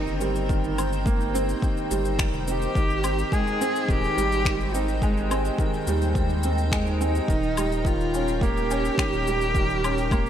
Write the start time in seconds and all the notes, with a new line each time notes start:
Already playing: D#3 G3 A#3 C4 D#4 A#4 C5 G5
0.07 G1, shaker
0.21 G3 C4, shaker
0.35 shaker
0.49 D#3, kick, shaker
0.64 shaker
0.78 C4, low woodblock, shaker
0.93 shaker
1.06 A#3, kick, shaker
1.21 shaker
1.34 C4, shaker
1.49 shaker
1.62 D#3, kick, shaker
1.77 shaker
1.91 G1 G3, shaker
2.05 shaker
2.19 D#3, finger snap, kick, shaker
2.33 F1, shaker
2.47 C4 G4, shaker
2.62 shaker
2.75 G#1 D#3, kick, shaker
2.90 shaker
3.04 C4, low woodblock, shaker
3.19 shaker
3.32 G#3 G#4, kick, shaker
3.47 shaker
3.61 C4, shaker
3.76 shaker
3.88 D#1 D#3 G4, kick, shaker
4.04 shaker
4.17 G#1 G3, shaker
4.32 shaker
4.45 D#3, finger snap, kick, shaker
4.61 shaker
4.75 C4 D#4, shaker
4.88 shaker
5.02 G#3, kick, shaker
5.17 shaker
5.31 C4, low woodblock, shaker
5.45 shaker
5.58 D#3, kick, shaker
5.74 shaker
5.87 D#2 G3, shaker
6.02 shaker
6.15 D#3, kick, shaker
6.30 shaker
6.43 C4, shaker
6.58 shaker
6.72 G#3, finger snap, kick, shaker
6.87 shaker
7.00 C4 D#4, shaker
7.15 shaker
7.28 D#1 D#3 A#4 C#5, kick, shaker
7.43 shaker
7.57 G3, low woodblock, shaker
7.72 shaker
7.85 D#3 F4, kick, shaker
8.01 shaker
8.14 C#4, shaker
8.28 shaker
8.41 A#3 G4, kick, shaker
8.57 shaker
8.71 C#4, shaker
8.85 shaker
8.98 D#3, finger snap, kick, shaker
9.12 D#1, shaker
9.27 G3, shaker
9.41 shaker
9.55 D#3, kick, shaker
9.70 shaker
9.84 C#4, low woodblock, shaker
9.98 shaker
10.11 A#3, kick, low woodblock, shaker
10.26 shaker